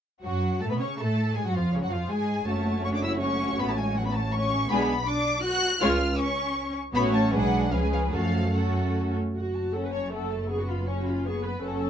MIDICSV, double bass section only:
0, 0, Header, 1, 2, 480
1, 0, Start_track
1, 0, Key_signature, 3, "minor"
1, 0, Tempo, 372671
1, 304, Time_signature, 3, 2, 24, 8
1, 8456, Tempo, 384615
1, 9896, Tempo, 409556
1, 11816, Tempo, 378788
1, 15037, End_track
2, 0, Start_track
2, 0, Title_t, "Double bass section"
2, 0, Program_c, 0, 48
2, 306, Note_on_c, 0, 42, 67
2, 762, Note_off_c, 0, 42, 0
2, 796, Note_on_c, 0, 45, 62
2, 917, Note_off_c, 0, 45, 0
2, 919, Note_on_c, 0, 47, 56
2, 1038, Note_off_c, 0, 47, 0
2, 1040, Note_on_c, 0, 49, 68
2, 1282, Note_off_c, 0, 49, 0
2, 1291, Note_on_c, 0, 45, 63
2, 1765, Note_off_c, 0, 45, 0
2, 1765, Note_on_c, 0, 44, 69
2, 1881, Note_off_c, 0, 44, 0
2, 1882, Note_on_c, 0, 42, 56
2, 1998, Note_on_c, 0, 41, 62
2, 1999, Note_off_c, 0, 42, 0
2, 2093, Note_off_c, 0, 41, 0
2, 2231, Note_on_c, 0, 37, 62
2, 2349, Note_off_c, 0, 37, 0
2, 2357, Note_on_c, 0, 42, 61
2, 2471, Note_off_c, 0, 42, 0
2, 2473, Note_on_c, 0, 41, 57
2, 2710, Note_on_c, 0, 44, 68
2, 2711, Note_off_c, 0, 41, 0
2, 3182, Note_off_c, 0, 44, 0
2, 3185, Note_on_c, 0, 30, 64
2, 4580, Note_off_c, 0, 30, 0
2, 4635, Note_on_c, 0, 33, 68
2, 6054, Note_off_c, 0, 33, 0
2, 6055, Note_on_c, 0, 35, 77
2, 6448, Note_off_c, 0, 35, 0
2, 7493, Note_on_c, 0, 37, 84
2, 7890, Note_off_c, 0, 37, 0
2, 8938, Note_on_c, 0, 33, 75
2, 9377, Note_off_c, 0, 33, 0
2, 9416, Note_on_c, 0, 35, 73
2, 9897, Note_off_c, 0, 35, 0
2, 9897, Note_on_c, 0, 37, 65
2, 10374, Note_off_c, 0, 37, 0
2, 10374, Note_on_c, 0, 42, 64
2, 11580, Note_off_c, 0, 42, 0
2, 11810, Note_on_c, 0, 30, 46
2, 14648, Note_off_c, 0, 30, 0
2, 14703, Note_on_c, 0, 30, 55
2, 15037, Note_off_c, 0, 30, 0
2, 15037, End_track
0, 0, End_of_file